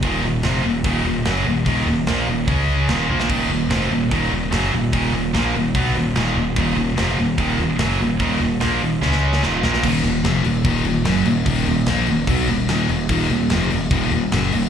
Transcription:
<<
  \new Staff \with { instrumentName = "Distorted electric guitar" } { \clef bass \time 4/4 \key ees \minor \tempo 4 = 147 <ees, bes, ees>8 <ees, bes,>8 <f, c f>8 <ees, bes,>8 <ees, bes, ees>8 <ees, bes,>8 <ges, des ges>8 <ees, bes,>8 | <ees, bes, ees>8 <ees, bes,>8 <bes, f bes>8 <ees, bes,>8 <des aes des'>4 <ees, bes, ees>8 <bes, f bes>8 | <ees, bes, ees>8 <ees, bes,>8 <f, c f>8 <ees, bes,>8 <ees, bes, ees>8 <ees, bes,>8 <ges, des ges>8 <ees, bes,>8 | <ees, bes, ees>8 <ees, bes,>8 <bes, f bes>8 <ees, bes,>8 <ces ges ces'>8 <ees, bes,>8 <ees, bes, ees>8 <ees, bes,>8 |
<ees, bes, ees>8 <ees, bes,>8 <f, c f>8 <ees, bes,>8 <ees, bes, ees>8 <ees, bes,>8 <ges, des ges>8 <ees, bes,>8 | <ees, bes, ees>8 <ees, bes,>8 <bes, f bes>8 <ees, bes,>8 <des aes des'>4 <ees, bes, ees>8 <bes, f bes>8 | <ees, bes, ees>8 <ees, bes,>8 <f, c f>8 <ees, bes,>8 <ees, bes, ees>8 <ees, bes,>8 <ges, des ges>8 <ees, bes,>8 | <ees, bes, ees>8 <ees, bes,>8 <bes, f bes>8 <ees, bes,>8 <ces ges ces'>8 <ees, bes,>8 <ees, bes, ees>8 <ees, bes,>8 |
<ees, bes, ees>8 <ees, bes,>8 <f, c f>8 <ees, bes,>8 <ees, bes, ees>8 <ees, bes,>8 <ges, des ges>8 <ees, bes,>8 | }
  \new Staff \with { instrumentName = "Distorted electric guitar" } { \clef bass \time 4/4 \key ees \minor <ees, bes, ees>8 <ees, bes,>8 <f, c f>8 <ees, bes,>8 <ees, bes, ees>8 <ees, bes,>8 <ges, des ges>8 <ees, bes,>8 | <ees, bes, ees>8 <ees, bes,>8 <bes, f bes>8 <ees, bes,>8 <des aes des'>4 <ees, bes, ees>8 <bes, f bes>8 | <ees, bes, ees>8 <ees, bes,>8 <f, c f>8 <ees, bes,>8 <ees, bes, ees>8 <ees, bes,>8 <ges, des ges>8 <ees, bes,>8 | <ees, bes, ees>8 <ees, bes,>8 <bes, f bes>8 <ees, bes,>8 <ces ges ces'>8 <ees, bes,>8 <ees, bes, ees>8 <ees, bes,>8 |
<ees, bes, ees>8 <ees, bes,>8 <f, c f>8 <ees, bes,>8 <ees, bes, ees>8 <ees, bes,>8 <ges, des ges>8 <ees, bes,>8 | <ees, bes, ees>8 <ees, bes,>8 <bes, f bes>8 <ees, bes,>8 <des aes des'>4 <ees, bes, ees>8 <bes, f bes>8 | r1 | r1 |
r1 | }
  \new Staff \with { instrumentName = "Distorted electric guitar" } { \clef bass \time 4/4 \key ees \minor r1 | r1 | r1 | r1 |
r1 | r1 | <ees, bes, ees>8 <ees, bes,>8 <f, c f>8 <ees, bes,>8 <ees, bes, ees>8 <ees, bes,>8 <ges, des ges>8 <ees, bes,>8 | <ees, bes, ees>8 <ees, bes,>8 <bes, f bes>8 <ees, bes,>8 <ces ges ces'>8 <ees, bes,>8 <ees, bes, ees>8 <ees, bes,>8 |
<ees, bes, ees>8 <ees, bes,>8 <f, c f>8 <ees, bes,>8 <ees, bes, ees>8 <ees, bes,>8 <ges, des ges>8 <ees, bes,>8 | }
  \new Staff \with { instrumentName = "Picked electric bass" } { \clef bass \time 4/4 \key ees \minor ees,,8 ees,,8 f,,8 ees,,8 ees,,8 ees,,8 ges,,8 ees,,8 | ees,,8 ees,,8 bes,,8 ees,,8 des,4 ees,,8 bes,,8 | ees,,8 ees,,8 f,,8 ees,,8 ees,,8 ees,,8 ges,,8 ees,,8 | ees,,8 ees,,8 bes,,8 ees,,8 ces,8 ees,,8 ees,,8 ees,,8 |
ees,,8 ees,,8 f,,8 ees,,8 ees,,8 ees,,8 ges,,8 ees,,8 | ees,,8 ees,,8 bes,,8 ees,,8 des,4 ees,,8 bes,,8 | ees,,8 ees,,8 f,,8 ees,,8 ees,,8 ees,,8 ges,,8 ees,,8 | ees,,8 ees,,8 bes,,8 ees,,8 ces,8 ees,,8 ees,,8 ees,,8 |
ees,,8 ees,,8 f,,8 ees,,8 ees,,8 ees,,8 ges,,8 ees,,8 | }
  \new DrumStaff \with { instrumentName = "Drums" } \drummode { \time 4/4 <hho bd>4 <hho sn>4 <hho bd>4 <hho sn>4 | <hho bd>4 <hho sn>4 <hho bd>4 <hho sn>8 tommh16 sn16 | <cymc bd>4 <hho sn>4 <hho bd>4 <hho sn>4 | <hho bd>4 <hho sn>4 <hho bd>4 <hho sn>4 |
<hho bd>4 <hho sn>4 <hho bd>4 <hho sn>4 | <hho bd>4 <hho sn>4 sn16 sn8 sn16 sn8 sn16 sn16 | <cymc bd>8 cymc8 <cymc sn>8 cymc8 <cymc bd>8 cymc8 <cymc sn>8 cymc8 | <cymc bd>8 cymc8 <cymc sn>8 cymc8 <cymc bd>8 cymc8 <cymc sn>8 cymc8 |
<cymc bd>8 cymc8 <cymc sn>8 cymc8 <cymc bd>8 cymc8 <cymc sn>8 cymc8 | }
>>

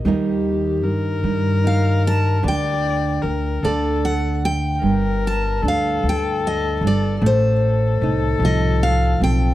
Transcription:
<<
  \new Staff \with { instrumentName = "Steel-string acoustic guitar" } { \time 6/8 \key g \minor \tempo 4. = 50 r2 f''8 a''8 | g''4. d''8 fis''8 g''8~ | g''8 a''8 f''8 g''8 ees''8 d''8 | c''4. ees''8 f''8 g''8 | }
  \new Staff \with { instrumentName = "Viola" } { \time 6/8 \key g \minor g'4 bes'2 | d''4 bes'8 a'4 r8 | bes'4 a'2 | a'2. | }
  \new Staff \with { instrumentName = "Nylon-string guitar" } { \clef bass \time 6/8 \key g \minor << { <g bes ees' bes'>2 ees'4 | bes'4. a'4. | r4 d'2 | r4 ees'4. c'8 | } \\ { ees4. g4. | d4. d4. | g,2~ g,8 g,8 | a,4. f4. | } >> }
  \new Staff \with { instrumentName = "Upright bass" } { \clef bass \time 6/8 \key g \minor ees,4 g,8 g,4. | d,4 d,8 d,4. | g,,4 d,8 d,4 g,,8 | a,,4 c,8 c,4 b,,8 | }
>>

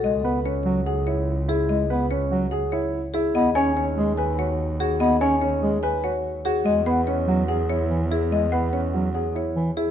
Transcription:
<<
  \new Staff \with { instrumentName = "Celesta" } { \time 4/4 \key e \major \tempo 4 = 145 r1 | r1 | r8 gis''8 r2. | r8 gis''8 r2. |
r8 fis''8 r2. | r8 fis''8 r2. | }
  \new Staff \with { instrumentName = "Marimba" } { \time 4/4 \key e \major dis''8 r8 cis''8 r8 fis''8 cis''8 r8 gis'8 | dis''8 r8 cis''8 r8 fis''8 cis''8 r8 gis'8 | dis''8 r8 cis''8 r8 gis''8 cis''8 r8 gis'8 | dis''8 r8 cis''8 r8 gis''8 cis''8 r8 gis'8 |
dis''8 r8 cis''8 r8 fis''8 cis''8 r8 gis'8 | dis''8 r8 cis''8 r8 fis''8 cis''8 r8 gis'8 | }
  \new Staff \with { instrumentName = "Grand piano" } { \time 4/4 \key e \major r8 b'8 cis'8 fis'8 gis'8 e'8 r8 e'8 | r8 b'8 cis'8 fis'8 gis'8 e'8 r8 e'8 | r8 cis''8 cis'8 gis'8 b'8 fis'8 r8 fis'8 | r8 cis''8 cis'8 gis'8 b'8 fis'8 r8 fis'8 |
r8 b'8 cis'8 fis'8 gis'8 e'8 r8 e'8 | r8 b'8 cis'8 fis'8 gis'8 e'8 r8 e'8 | }
  \new Staff \with { instrumentName = "Bass clarinet" } { \clef bass \time 4/4 \key e \major gis8 b8 r8 fis8 r2 | gis8 b8 r8 fis8 r2 | b8 cis'8 r8 gis8 r2 | b8 cis'8 r8 gis8 r2 |
gis8 b8 r8 fis8 r4 e8 r8 | gis8 b8 r8 fis8 r4 e8 r8 | }
  \new Staff \with { instrumentName = "Double bass" } { \clef bass \time 4/4 \key e \major cis,1~ | cis,1 | dis,1~ | dis,1 |
e,1~ | e,1 | }
>>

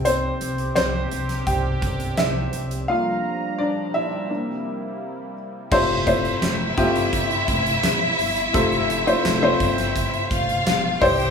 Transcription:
<<
  \new Staff \with { instrumentName = "Violin section" } { \time 4/4 \key f \major \tempo 4 = 85 r1 | r1 | <e' e''>1~ | <e' e''>2~ <e' e''>8 <f' f''>4 <g' g''>8 | }
  \new Staff \with { instrumentName = "Upright piano" } { \time 4/4 \key f \major <c' c''>4 <c' c''>4 <g' g''>4 <e' e''>4 | f''4 <d' d''>8 <e' e''>2 r8 | <a c' e' f' c''>8 <a c' e' f' c''>8. r16 <g a c' e' f' g'>4.~ <g a c' e' f' g'>16 r8. | <a c' e' f' a'>8. <a c' e' f' c''>8 <a c' f' c''>4.~ <a c' f' c''>16 r8 <e' g' c''>8 | }
  \new Staff \with { instrumentName = "Upright piano" } { \time 4/4 \key f \major <g c' e'>8 r2. r8 | <a bes f'>4. r8 <bes d' e'>4. r8 | c4. r2 r8 | c4. r2 g,8 | }
  \new Staff \with { instrumentName = "Analog synth pad" } { \time 4/4 \key f \major <c c' g'>1 | <f g d' bes''>2 <c bes e'>2 | r1 | r1 | }
  \new Staff \with { instrumentName = "Upright bass" } { \clef bass \time 4/4 \key f \major c,8 c,8 c,8 c,8 c,8 c,8 c,8 c,8 | r1 | f,,4 f,,8 g,,8. r16 f,,8 e,,8 g,,8 | f,,4 f,,8 g,,8. r16 f,,8 e,,8 c,8 | }
  \new DrumStaff \with { instrumentName = "Drums" } \drummode { \time 4/4 hh8 hh16 hh16 <hc hh sn>8 hh16 <hh sn>16 <hh bd>8 <hh bd>16 hh16 <hc hh sn>8 hh16 hh16 | r4 r4 r4 r4 | <cymc bd>8 <hh bd>16 hh16 <hc hh sn>8 <hh bd>16 hh16 <hh bd>16 hh16 <hh bd>16 hh16 <hc hh sn>8 hho16 hh16 | <hh bd>16 hh16 hh16 hh16 <hc hh sn>8 <hh bd>16 <hh sn>16 <hh bd>16 hh16 <hh bd>16 hh16 <hc hh sn>8 <hho bd>16 hh16 | }
>>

